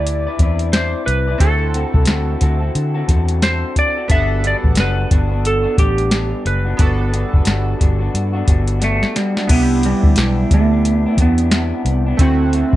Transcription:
Already playing: fingered electric bass D2, synth keys D4 E4 G4 D5, clean electric guitar E4 B4 D5, electric slide guitar D5
0.07 closed hi-hat
0.27 clean electric guitar E4 B4 D5
0.39 fingered electric bass E2, clean electric guitar C4 E4 B4, kick, closed hi-hat
0.43 clean electric guitar D5
0.59 closed hi-hat
0.73 clean electric guitar C4 E4 D5, electric slide guitar C5, snare, closed hi-hat
1.06 fingered electric bass C2, electric slide guitar B4, closed hi-hat
1.28 clean electric guitar E4 B4 D5
1.38 fingered electric bass D2, clean electric guitar D3 C4 F#4, synth keys C4 E4 F#4, electric slide guitar A4, kick, closed hi-hat
1.42 clean electric guitar A4, synth keys A4
1.73 clean electric guitar D3 C4 F#4 A4, closed hi-hat
1.94 fingered electric bass C2, kick
2.06 fingered electric bass D2, clean electric guitar D3 C4 F#4, snare, closed hi-hat
2.10 clean electric guitar A4
2.40 fingered electric bass D2, clean electric guitar D3 C4 F#4 A4, kick, closed hi-hat
2.61 clean electric guitar C4 F#4 A4
2.75 fingered electric bass D3, closed hi-hat
2.94 clean electric guitar C4 F#4 A4
3.06 fingered electric bass E2, clean electric guitar D3 C4 F#4 A4, kick, closed hi-hat
3.28 closed hi-hat
3.42 clean electric guitar D3 C4 F#4 A4, electric slide guitar C5, snare, closed hi-hat
3.76 electric slide guitar D5, kick, closed hi-hat
3.96 clean electric guitar C4 F#4 A4
4.08 fingered electric bass G1, clean electric guitar G3 B3 D4 F#4, synth keys B3 D4 F#5, electric slide guitar E5, kick, closed hi-hat
4.13 synth keys A4
4.42 clean electric guitar G3 B3 D4 F#4, closed hi-hat
4.47 electric slide guitar D5
4.63 fingered electric bass A1, kick
4.75 fingered electric bass F#1, clean electric guitar G3 B3 D4 F#4, snare, closed hi-hat
4.80 electric slide guitar B4
5.09 fingered electric bass G1, clean electric guitar G3 B3 D4 F#4, kick, closed hi-hat
5.29 clean electric guitar B3 D4 F#4
5.45 electric slide guitar A4, closed hi-hat
5.63 clean electric guitar B3 D4 F#4
5.77 fingered electric bass A1, clean electric guitar G3 B3 D4, electric slide guitar G4, kick, closed hi-hat
5.98 closed hi-hat
6.11 clean electric guitar G3 B3 D4, snare, closed hi-hat
6.45 fingered electric bass F#1, electric slide guitar B4, closed hi-hat
6.65 clean electric guitar B3 D4 F#4
6.77 fingered electric bass G1, clean electric guitar G3 B3 D4 F#4, synth keys B3 D4 F#4, kick, closed hi-hat
6.82 synth keys A4
7.11 clean electric guitar G3 B3 D4 F#4, closed hi-hat
7.34 fingered electric bass F#1, kick
7.45 fingered electric bass G1, clean electric guitar G3 B3 D4 F#4, snare, closed hi-hat
7.79 fingered electric bass G1, clean electric guitar G3 B3 D4 F#4, kick, closed hi-hat
7.98 clean electric guitar B3 D4 F#4
8.14 fingered electric bass G2, closed hi-hat
8.33 clean electric guitar B3 D4 F#4
8.46 fingered electric bass G1, clean electric guitar G3 B3 D4, kick, closed hi-hat
8.50 clean electric guitar F#4
8.68 closed hi-hat
8.80 clean electric guitar G3 B3 D4 F#4, electric slide guitar A3, snare, closed hi-hat
9.03 snare
9.16 electric slide guitar G3, snare, closed hi-hat
9.35 clean electric guitar B3 D4 F#4, snare
9.47 fingered electric bass C2, clean electric guitar C3 E3 B3 D4, synth keys B3 D4 E4, electric slide guitar B3, kick, closed hi-hat, crash
9.53 synth keys G4
9.83 clean electric guitar C3 E3 B3 D4, electric slide guitar G3, closed hi-hat
10.03 fingered electric bass D2, kick
10.16 fingered electric bass B1, clean electric guitar E3 B3 D4, snare, closed hi-hat
10.51 fingered electric bass D2, clean electric guitar C3 E3 B3 D4, electric slide guitar A3, kick, closed hi-hat
10.71 clean electric guitar E3 B3 D4
10.85 closed hi-hat
11.06 clean electric guitar E3 B3 D4
11.17 fingered electric bass E2, clean electric guitar C3 E3 B3, kick, closed hi-hat
11.21 electric slide guitar B3, clean electric guitar D4
11.38 closed hi-hat
11.51 clean electric guitar C3 E3 B3 D4, snare, closed hi-hat
11.85 fingered electric bass C2, closed hi-hat
12.06 clean electric guitar E3 B3 D4
12.17 fingered electric bass D2, clean electric guitar D3 A3, synth keys A3 C4 E4, electric slide guitar C4, kick, closed hi-hat
12.21 clean electric guitar C4 F#4, synth keys F#4
12.53 clean electric guitar D3 A3 C4 F#4, closed hi-hat
12.73 fingered electric bass C2, kick

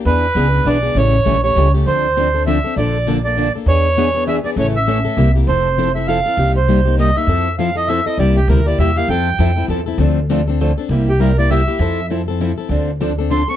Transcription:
0.05 upright bass E2, steel-string acoustic guitar E3 B3 D4 G#4 B4, accordion B4
0.35 upright bass C#2, steel-string acoustic guitar E3 B3 D4 G#4 B4
0.53 steel-string acoustic guitar B3 D4 G#4
0.65 upright bass B1, steel-string acoustic guitar E3 B3 D4 G#4 B4, accordion D5
0.83 steel-string acoustic guitar B3 D4 G#4
0.95 upright bass A1, steel-string acoustic guitar C#3 E3 G3 A3 C#4 E4 G4 A4, accordion C#5
1.25 upright bass A#1, steel-string acoustic guitar C#3 E3 G3 A3 C#4 E4 G4 A4
1.44 steel-string acoustic guitar A3 C#4 G4, accordion C#5
1.56 upright bass C#2, steel-string acoustic guitar C#3 E3 G3 A3 C#4 E4 G4 A4
1.74 steel-string acoustic guitar A3 C#4 G4
1.86 upright bass D2, steel-string acoustic guitar D3 F3 C4 D4 A4, accordion C5
2.16 steel-string acoustic guitar D3 F3 C4 D4 A4
2.34 steel-string acoustic guitar C4 D4 A4
2.46 steel-string acoustic guitar D3 F3 C4 D4 A4, accordion E5
2.64 steel-string acoustic guitar C4 D4 A4
2.76 upright bass A#1, steel-string acoustic guitar D3 F3 A#3 D4 A4, accordion D5
3.07 steel-string acoustic guitar D3 F3 A#3 D4 A4
3.25 steel-string acoustic guitar A#3 D4 A4, accordion D5
3.37 steel-string acoustic guitar D3 F3 A#3 D4 A4
3.55 steel-string acoustic guitar A#3 D4 A4
3.66 upright bass E2, steel-string acoustic guitar E3 B3 D4 G#4 B4, accordion C#5
3.97 steel-string acoustic guitar E3 B3 D4 G#4 B4
4.15 steel-string acoustic guitar B3 D4 G#4
4.27 steel-string acoustic guitar E3 B3 D4 G#4 B4, accordion E5
4.44 steel-string acoustic guitar B3 D4 G#4, accordion D5
4.56 upright bass A1, steel-string acoustic guitar C#3 E3 A3 C#4 E4 A4, accordion C#5
4.76 accordion E5
4.86 steel-string acoustic guitar C#3 E3 A3 C#4 E4 A4
5.05 steel-string acoustic guitar A3 C#4 A4
5.17 upright bass C2, steel-string acoustic guitar C3 G3 A#3 E4 G4
5.35 steel-string acoustic guitar A#3 E4 G4
5.47 upright bass F1, steel-string acoustic guitar F3 C4 E4 A4, accordion C5
5.78 steel-string acoustic guitar F3 C4 E4 A4
5.95 steel-string acoustic guitar C4 E4 A4, accordion E5
6.07 steel-string acoustic guitar F3 C4 E4 A4, accordion F5
6.26 steel-string acoustic guitar C4 E4 A4
6.37 upright bass C2, steel-string acoustic guitar C3 G3 A#3 D#4 G4
6.56 accordion C5
6.68 steel-string acoustic guitar C3 G3 A#3 D#4 G4
6.85 steel-string acoustic guitar A#3 D#4 G4
6.98 steel-string acoustic guitar C3 G3 A#3 D#4 G4, accordion D#5
7.16 steel-string acoustic guitar A#3 D#4 G4, accordion E5
7.27 upright bass F2, steel-string acoustic guitar F3 C4 E4 A4
7.58 steel-string acoustic guitar F3 C4 E4 A4, accordion F5
7.75 steel-string acoustic guitar C4 E4 A4, accordion D#5
7.88 steel-string acoustic guitar F3 C4 E4 A4, accordion E5
8.06 steel-string acoustic guitar C4 E4 A4, accordion D#5
8.18 upright bass C2, steel-string acoustic guitar C3 G3 A#3 E4 G4, accordion D5
8.36 accordion G4
8.48 upright bass D2, steel-string acoustic guitar C3 G3 A#3 E4 G4, accordion A#4
8.66 steel-string acoustic guitar A#3 E4 G4, accordion D5
8.78 upright bass E2, steel-string acoustic guitar C3 G3 A#3 E4 G4, accordion E5
8.96 steel-string acoustic guitar A#3 E4 G4, accordion F5
9.08 upright bass F2, steel-string acoustic guitar F3 C4 E4 A4, accordion G5
9.39 upright bass F2, steel-string acoustic guitar F3 C4 E4 A4
9.56 steel-string acoustic guitar C4 E4 A4
9.68 upright bass E2, steel-string acoustic guitar F3 C4 E4 A4
9.86 steel-string acoustic guitar C4 E4 A4
9.98 upright bass D2, steel-string acoustic guitar D3 F3 A3 C4 D4 F4 A4
10.29 steel-string acoustic guitar D3 F3 A3 C4 D4 F4 A4
10.48 steel-string acoustic guitar C4 D4 A4
10.60 steel-string acoustic guitar D3 F3 A3 C4 D4 F4 A4
10.78 steel-string acoustic guitar C4 D4 A4
10.89 upright bass C2, steel-string acoustic guitar C3 G3 A#3 E4 G4
11.09 accordion G4
11.20 steel-string acoustic guitar C3 G3 A#3 E4 G4, accordion A#4
11.37 steel-string acoustic guitar A#3 E4 G4, accordion D5
11.50 steel-string acoustic guitar C3 G3 A#3 E4 G4, accordion E5
11.68 steel-string acoustic guitar A#3 E4 G4
11.79 upright bass F2, steel-string acoustic guitar F3 C4 E4 A4
12.10 steel-string acoustic guitar F3 C4 E4 A4
12.28 steel-string acoustic guitar C4 E4 A4
12.40 steel-string acoustic guitar F3 C4 E4 A4
12.58 steel-string acoustic guitar C4 E4 A4
12.69 upright bass D2, steel-string acoustic guitar D3 F3 C4 D4 A4
13.01 steel-string acoustic guitar D3 F3 C4 D4 A4
13.19 steel-string acoustic guitar C4 D4 A4
13.31 steel-string acoustic guitar D3 F3 C4 D4 A4, accordion C6
13.48 steel-string acoustic guitar C4 D4 A4, accordion C#6

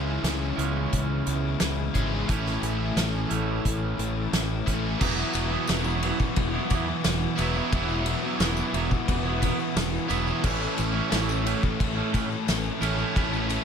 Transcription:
Already playing: fingered electric bass C#2, overdriven electric guitar C#3 E3 G#3 C#4 E4 G#4, clean electric guitar G#4
0.23 fingered electric bass C#2, clean electric guitar C#4, snare, closed hi-hat
0.56 fingered electric bass C#2, overdriven electric guitar G#3 C#4 E4, clean electric guitar B3, closed hi-hat
0.61 overdriven electric guitar C#3
0.92 fingered electric bass C#2, clean electric guitar C#4, kick, closed hi-hat
1.26 fingered electric bass C#2, overdriven electric guitar C#3 E3 G#3 C#4 E4, clean electric guitar B3, closed hi-hat
1.60 fingered electric bass C#2, overdriven electric guitar C#3 E3 G#3 C#4 E4, snare, closed hi-hat
1.94 fingered electric bass G#1, overdriven electric guitar E3 G#3 C#4 G#4, clean electric guitar C#4, kick, closed hi-hat
1.98 overdriven electric guitar C#3
2.28 fingered electric bass A1, overdriven electric guitar A2 E3 A3 C#4 E4, kick, closed hi-hat
2.46 snare
2.62 fingered electric bass A1, clean electric guitar G#4, closed hi-hat
2.96 fingered electric bass A1, clean electric guitar C#4, snare, closed hi-hat
3.29 fingered electric bass A1, overdriven electric guitar E3 A3 C#4 E4, clean electric guitar A3, closed hi-hat
3.33 overdriven electric guitar A2
3.65 fingered electric bass A1, clean electric guitar C#4, kick, closed hi-hat
3.97 fingered electric bass A1, overdriven electric guitar A2 E3 A3 C#4 E4, closed hi-hat
4.31 fingered electric bass A1, overdriven electric guitar A2 E3 A3 C#4 E4, snare, closed hi-hat
4.66 fingered electric bass A1, overdriven electric guitar A2 E3 A3 C#4 E4, clean electric guitar C#4, kick, closed hi-hat
4.99 fingered electric bass E1, overdriven electric guitar E2 B2 E3 F#3 B3 E4 F#4, kick, crash, tambourine
5.17 tambourine
5.33 fingered electric bass E1, overdriven electric guitar E3 B3 E4 F#4, ride, tambourine
5.51 overdriven electric guitar E3 F#3 B3 E4 F#4
5.67 fingered electric bass E1, overdriven electric guitar E2 B2 E3 F#3 B3 E4 F#4, snare, ride, tambourine
5.84 overdriven electric guitar B3 E4 F#4, tambourine
5.89 overdriven electric guitar E3
6.03 overdriven electric guitar E3 F#3 B3 E4, ride
6.07 overdriven electric guitar F#4
6.20 muted overdriven electric guitar stroke, kick, tambourine
6.36 fingered electric bass E1, clean electric guitar B3, kick, ride
6.54 overdriven electric guitar E3 F#3 B3 E4 F#4
6.70 fingered electric bass E2, overdriven electric guitar E3 F#3 B3 E4 F#4, kick, ride, tambourine
6.88 overdriven electric guitar E3 B3 E4 F#4, muted overdriven electric guitar stroke
7.04 fingered electric bass E1, overdriven electric guitar E2 B2 E3 B3 E4 F#4, snare, ride, tambourine
7.21 tambourine
7.38 fingered electric bass E1, overdriven electric guitar E3 F#3 B3 E4 F#4, ride, tambourine
7.55 overdriven electric guitar E3 B3 E4 F#4, tambourine
7.60 overdriven electric guitar F#3
7.72 fingered electric bass E1, overdriven electric guitar E2 B2 E3 F#3 B3 E4 F#4, kick, ride, tambourine
7.89 tambourine
8.06 overdriven electric guitar E3 B3 E4 F#4, ride
8.23 overdriven electric guitar E3 F#3 B3 E4 F#4
8.40 fingered electric bass E1, overdriven electric guitar E2 B2 E3 F#3 B3 E4 F#4, snare, ride, tambourine
8.57 overdriven electric guitar E3 B3 E4 F#4, tambourine
8.73 fingered electric bass E1, overdriven electric guitar E3 F#3 B3 E4 F#4, ride
8.91 muted overdriven electric guitar stroke, kick, tambourine
9.08 fingered electric bass E1, clean electric guitar B3, kick, ride
9.24 overdriven electric guitar E3 B3 E4 F#4
9.29 overdriven electric guitar F#3
9.42 overdriven electric guitar E3 F#3 B3 E4 F#4, kick, ride, tambourine
9.59 overdriven electric guitar E3 B3 E4 F#4, muted overdriven electric guitar stroke, tambourine
9.76 fingered electric bass E1, overdriven electric guitar E2 B2 E3 B3 E4 F#4, snare, ride, tambourine
9.94 tambourine
10.09 fingered electric bass E1, overdriven electric guitar E3 F#3 B3 E4 F#4, ride, tambourine
10.26 overdriven electric guitar E3 B3 E4 F#4, tambourine
10.31 overdriven electric guitar F#3
10.42 fingered electric bass A1, overdriven electric guitar A2 E3 A3 C#4 E4 A4, kick, tambourine, crash
10.47 overdriven electric guitar E4
10.63 tambourine
10.75 fingered electric bass A1, overdriven electric guitar E3 A3 C#4 A4, ride, tambourine
10.93 overdriven electric guitar A3 C#4 E4 A4
11.09 fingered electric bass A1, overdriven electric guitar A2 E3 A3 C#4 A4, snare, ride, tambourine
11.14 overdriven electric guitar E4
11.26 overdriven electric guitar A3 C#4 A4, tambourine
11.44 overdriven electric guitar E3 A3 C#4 A4, ride
11.49 overdriven electric guitar E4
11.63 muted overdriven electric guitar stroke, kick, tambourine
11.80 fingered electric bass A1, clean electric guitar A3, kick, ride
11.95 overdriven electric guitar C#4 E4 A4
11.99 overdriven electric guitar A3
12.12 fingered electric bass A2, overdriven electric guitar E3 A3 C#4 E4 A4, kick, ride, tambourine
12.29 overdriven electric guitar A3 C#4 A4, muted overdriven electric guitar stroke, tambourine
12.45 fingered electric bass A1, overdriven electric guitar A2 E3 A3 C#4 A4, snare, ride, tambourine
12.65 tambourine
12.79 fingered electric bass A1, overdriven electric guitar E3 A3 C#4 E4 A4, ride, tambourine
12.83 overdriven electric guitar A2 E3 E4
12.97 overdriven electric guitar A3 C#4 E4 A4, tambourine
13.14 fingered electric bass A1, overdriven electric guitar A2 E3 A3 C#4 A4, kick, ride, tambourine
13.18 overdriven electric guitar E4
13.34 tambourine
13.48 overdriven electric guitar E3 A3 C#4 A4, ride, tambourine

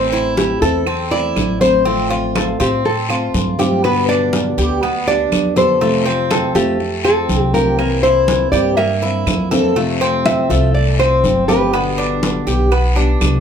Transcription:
Already playing: upright bass A1, steel-string acoustic guitar E3 A3 C4 E4, cuban tres C4, nylon-string guitar C5
0.12 cuban tres E4, high conga
0.37 nylon-string guitar G4, high conga, short guiro
0.62 upright bass E2, steel-string acoustic guitar A3 C4 E4, nylon-string guitar A4, cuban tres A4, high conga, short guiro
0.86 cuban tres C4, muted steel-string acoustic guitar stroke, high conga, long guiro, claves
1.11 steel-string acoustic guitar A3 C4 E4, cuban tres E4, nylon-string guitar D5, high conga
1.36 upright bass A1, high conga, short guiro, claves
1.61 steel-string acoustic guitar A3 C4 E4, cuban tres C5, nylon-string guitar C5, high conga, short guiro
1.85 steel-string acoustic guitar F3 A3 C4 F4, cuban tres C4, high conga, long guiro
2.10 cuban tres F4, high conga
2.35 nylon-string guitar A4, high conga, short guiro, claves
2.60 upright bass A2, steel-string acoustic guitar A3 C4 F4, cuban tres C4, nylon-string guitar G4, high conga, short guiro
2.85 nylon-string guitar A4, muted steel-string acoustic guitar stroke, high conga, long guiro
3.09 steel-string acoustic guitar A3 C4 F4, cuban tres F4, high conga, claves
3.34 upright bass G2, high conga, short guiro
3.59 steel-string acoustic guitar A3 C4 F4, cuban tres G4, high conga, short guiro
3.83 steel-string acoustic guitar B2 D3 G3 B3 G4, cuban tres B3, nylon-string guitar B4, high conga, long guiro, claves
4.09 cuban tres D4, nylon-string guitar D5, high conga
4.33 high conga, short guiro
4.58 upright bass D2, steel-string acoustic guitar D3 G3 B3 G4, cuban tres G4, high conga, short guiro
4.82 cuban tres B3, muted steel-string acoustic guitar stroke, high conga, long guiro, claves
5.07 steel-string acoustic guitar G3 B3 G4, cuban tres D4, nylon-string guitar D5, high conga
5.31 upright bass F2, high conga, short guiro, claves
5.56 steel-string acoustic guitar D3 G3 B3 G4, cuban tres A4, nylon-string guitar C5, high conga, short guiro
5.81 steel-string acoustic guitar C3 F3 A3 C4 F4, cuban tres A3, high conga, long guiro
6.06 cuban tres C4, high conga
6.30 nylon-string guitar A4, high conga, short guiro, claves
6.55 upright bass F2, steel-string acoustic guitar F3 A3 C4 F4, cuban tres A3, nylon-string guitar G4, high conga, short guiro
6.80 muted steel-string acoustic guitar stroke, high conga, long guiro
7.04 steel-string acoustic guitar A3 C4 F4, cuban tres C4, nylon-string guitar A4, high conga, claves
7.29 upright bass C2, high conga, short guiro
7.54 steel-string acoustic guitar F3 A3 C4 F4, cuban tres G4, nylon-string guitar A#4, high conga, short guiro
7.79 steel-string acoustic guitar C3 E3 A#3 C4 E4, cuban tres A#3, high conga, long guiro, claves
8.03 cuban tres E4, nylon-string guitar C5, high conga
8.28 high conga, short guiro
8.52 upright bass G2, steel-string acoustic guitar E3 A#3 C4 E4, cuban tres G4, nylon-string guitar D5, high conga, short guiro
8.77 cuban tres A#3, nylon-string guitar E5, muted steel-string acoustic guitar stroke, high conga, long guiro, claves
9.02 steel-string acoustic guitar A#3 C4 E4, cuban tres E4, high conga
9.26 upright bass F2, high conga, short guiro, claves
9.51 steel-string acoustic guitar E3 A#3 C4 E4, cuban tres A4, high conga, short guiro
9.76 steel-string acoustic guitar C3 F3 A3 C4 F4, cuban tres A3, high conga, long guiro
10.01 cuban tres C4, high conga
10.26 nylon-string guitar E5, high conga, short guiro, claves
10.50 upright bass C2, steel-string acoustic guitar F3 A3 C4 F4, cuban tres A3, high conga, short guiro
10.74 nylon-string guitar D5, muted steel-string acoustic guitar stroke, high conga, long guiro
10.99 steel-string acoustic guitar A3 C4 F4, cuban tres C4, nylon-string guitar C5, high conga, claves
11.24 upright bass G1, high conga, short guiro
11.48 steel-string acoustic guitar F3 A3 C4 F4, cuban tres G4, nylon-string guitar B4, high conga, short guiro
11.73 steel-string acoustic guitar B2 D3 G3 B3 G4, cuban tres B3, high conga, long guiro, claves
11.98 cuban tres D4, high conga
12.23 high conga, short guiro
12.47 upright bass B1, steel-string acoustic guitar D3 G3 B3 G4, cuban tres G4, high conga, short guiro
12.71 cuban tres B3, muted steel-string acoustic guitar stroke, high conga, long guiro, claves
12.96 steel-string acoustic guitar G3 B3 G4, cuban tres D4, high conga
13.21 upright bass C2, high conga, short guiro, claves

